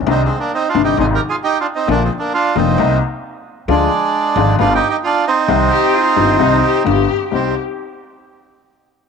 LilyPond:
<<
  \new Staff \with { instrumentName = "Cello" } { \time 4/4 \key c \minor \tempo 4 = 132 r1 | r1 | r1 | r8 g'8 f'4 ees'8 g'8 g'4 |
g'8 r2. r8 | }
  \new Staff \with { instrumentName = "Bandoneon" } { \time 4/4 \key c \minor \tuplet 3/2 { <c' ees'>8 <aes c'>8 <bes d'>8 <c' ees'>8 <d' f'>8 <ees' g'>8 <ees' aes'>8 <g' bes'>8 <f' aes'>8 <ees' g'>8 <d' f'>8 <c' ees'>8 } | \tuplet 3/2 { <bes d'>8 <aes c'>8 <bes d'>8 } <d' f'>8 <c' ees'>4 r4. | <aes d'>2 \tuplet 3/2 { <d' f'>8 <ees' g'>8 <ees' g'>8 } <d' f'>8 <c' ees'>8~ | <c' ees'>2. r4 |
c'8 r2. r8 | }
  \new Staff \with { instrumentName = "Upright piano" } { \clef bass \time 4/4 \key c \minor <c, c ees g d'>8 r4 <g,, g, c ees g d'>8 <aes,, aes, c ees aes ees'>8 r4. | <bes,, bes, d f bes f'>8 r4 <f,, f, d f bes f'>8 <c, c g bes ees'>8 r4. | <d, d f aes f'>8 r4 <aes,, aes, d f aes f'>8 <g,, g, d g b f'>8 r4. | <c, c ees g c' g'>8 r4 <g,, g, ees g c' g'>8 <c, c ees g c' g'>8 r8 <g,, g, d g b f'>8 r8 |
<c, g c' ees'>8 r2. r8 | }
  \new Staff \with { instrumentName = "Upright bass" } { \clef bass \time 4/4 \key c \minor c,8 r4 g,,8 aes,,8 r4. | bes,,8 r4 f,,8 c,8 r4. | d,8 r4 aes,,8 g,,8 r4. | c,8 r4 g,,8 c,8 r8 g,,8 r8 |
c,8 r2. r8 | }
>>